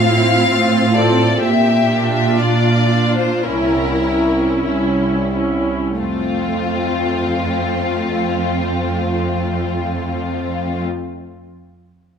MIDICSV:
0, 0, Header, 1, 5, 480
1, 0, Start_track
1, 0, Key_signature, -1, "major"
1, 0, Tempo, 899550
1, 755, Time_signature, 4, 2, 24, 8
1, 755, Tempo, 964630
1, 1235, Tempo, 1079137
1, 1715, Tempo, 1192843
1, 2195, Tempo, 1339286
1, 2675, Tempo, 1202405
1, 3635, Tempo, 1183432
1, 4115, Tempo, 1134216
1, 5219, End_track
2, 0, Start_track
2, 0, Title_t, "Violin section"
2, 0, Program_c, 0, 48
2, 0, Note_on_c, 0, 77, 60
2, 515, Note_off_c, 0, 77, 0
2, 515, Note_on_c, 0, 74, 47
2, 748, Note_on_c, 0, 76, 43
2, 755, Note_off_c, 0, 74, 0
2, 1103, Note_off_c, 0, 76, 0
2, 1109, Note_on_c, 0, 76, 43
2, 1232, Note_off_c, 0, 76, 0
2, 1233, Note_on_c, 0, 74, 42
2, 1589, Note_off_c, 0, 74, 0
2, 1589, Note_on_c, 0, 72, 41
2, 1706, Note_on_c, 0, 70, 41
2, 1711, Note_off_c, 0, 72, 0
2, 2190, Note_off_c, 0, 70, 0
2, 2669, Note_on_c, 0, 65, 36
2, 4647, Note_off_c, 0, 65, 0
2, 5219, End_track
3, 0, Start_track
3, 0, Title_t, "Violin section"
3, 0, Program_c, 1, 48
3, 41, Note_on_c, 1, 64, 37
3, 276, Note_off_c, 1, 64, 0
3, 280, Note_on_c, 1, 65, 40
3, 508, Note_on_c, 1, 69, 44
3, 516, Note_off_c, 1, 65, 0
3, 747, Note_on_c, 1, 67, 42
3, 752, Note_off_c, 1, 69, 0
3, 1231, Note_off_c, 1, 67, 0
3, 1234, Note_on_c, 1, 65, 35
3, 1704, Note_off_c, 1, 65, 0
3, 1716, Note_on_c, 1, 64, 36
3, 2192, Note_off_c, 1, 64, 0
3, 2196, Note_on_c, 1, 64, 26
3, 2434, Note_off_c, 1, 64, 0
3, 2673, Note_on_c, 1, 60, 31
3, 2675, Note_on_c, 1, 65, 33
3, 4651, Note_off_c, 1, 60, 0
3, 4653, Note_off_c, 1, 65, 0
3, 5219, End_track
4, 0, Start_track
4, 0, Title_t, "Viola section"
4, 0, Program_c, 2, 48
4, 35, Note_on_c, 2, 60, 36
4, 39, Note_on_c, 2, 65, 34
4, 504, Note_off_c, 2, 60, 0
4, 506, Note_off_c, 2, 65, 0
4, 518, Note_on_c, 2, 60, 32
4, 520, Note_on_c, 2, 65, 30
4, 752, Note_off_c, 2, 60, 0
4, 753, Note_off_c, 2, 65, 0
4, 985, Note_on_c, 2, 65, 33
4, 989, Note_on_c, 2, 62, 31
4, 1458, Note_off_c, 2, 65, 0
4, 1460, Note_off_c, 2, 62, 0
4, 1468, Note_on_c, 2, 62, 32
4, 1469, Note_on_c, 2, 65, 31
4, 1709, Note_off_c, 2, 62, 0
4, 1710, Note_off_c, 2, 65, 0
4, 1714, Note_on_c, 2, 61, 29
4, 1716, Note_on_c, 2, 64, 30
4, 1939, Note_off_c, 2, 61, 0
4, 1941, Note_off_c, 2, 64, 0
4, 1944, Note_on_c, 2, 61, 31
4, 1945, Note_on_c, 2, 64, 30
4, 2427, Note_off_c, 2, 61, 0
4, 2428, Note_off_c, 2, 64, 0
4, 2437, Note_on_c, 2, 64, 27
4, 2439, Note_on_c, 2, 61, 26
4, 2669, Note_off_c, 2, 61, 0
4, 2669, Note_off_c, 2, 64, 0
4, 2672, Note_on_c, 2, 57, 30
4, 4649, Note_off_c, 2, 57, 0
4, 5219, End_track
5, 0, Start_track
5, 0, Title_t, "Cello section"
5, 0, Program_c, 3, 48
5, 0, Note_on_c, 3, 45, 42
5, 216, Note_off_c, 3, 45, 0
5, 271, Note_on_c, 3, 45, 40
5, 696, Note_off_c, 3, 45, 0
5, 754, Note_on_c, 3, 46, 40
5, 1175, Note_off_c, 3, 46, 0
5, 1235, Note_on_c, 3, 46, 37
5, 1656, Note_off_c, 3, 46, 0
5, 1719, Note_on_c, 3, 36, 35
5, 2137, Note_off_c, 3, 36, 0
5, 2197, Note_on_c, 3, 36, 33
5, 2622, Note_off_c, 3, 36, 0
5, 2677, Note_on_c, 3, 41, 31
5, 4655, Note_off_c, 3, 41, 0
5, 5219, End_track
0, 0, End_of_file